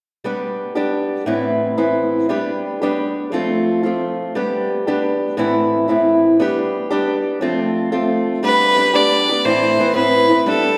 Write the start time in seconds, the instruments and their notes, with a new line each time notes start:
0.24 steel-string acoustic guitar G3 B3 D4 G4
0.75 steel-string acoustic guitar G3 B3 D4 G4
1.26 steel-string acoustic guitar A2 E3 B3 C4 E4
1.78 steel-string acoustic guitar A2 E3 B3 C4 E4
2.29 steel-string acoustic guitar G3 B3 D4 G4
2.82 steel-string acoustic guitar G3 B3 D4 G4
3.32 steel-string acoustic guitar F3 A3 C4 F4
3.83 steel-string acoustic guitar F3 A3 C4 F4
4.35 steel-string acoustic guitar G3 B3 D4 G4
4.87 steel-string acoustic guitar G3 B3 D4 G4
5.37 steel-string acoustic guitar A2 E3 B3 C4 E4
5.88 steel-string acoustic guitar A2 E3 B3 C4 E4
6.40 steel-string acoustic guitar G3 B3 D4 G4
6.90 steel-string acoustic guitar G3 B3 D4 G4
7.41 steel-string acoustic guitar F3 A3 C4 F4
7.92 steel-string acoustic guitar F3 A3 C4 F4
8.43 steel-string acoustic guitar G3 B3 D4 G4, fiddle B4
8.76 steel-string acoustic guitar G3 B3 D4 G4
8.94 steel-string acoustic guitar G3 B3 D4 G4, fiddle D5
9.29 steel-string acoustic guitar B3 D4 G4
9.44 steel-string acoustic guitar A2 E3 C4 E4, fiddle C5
9.78 steel-string acoustic guitar E3 B3 C4 E4
9.95 steel-string acoustic guitar A2 E3 B3 C4 E4, fiddle B4
10.29 steel-string acoustic guitar B3 C4 E4
10.46 steel-string acoustic guitar G3 B3 D4 G4, fiddle A4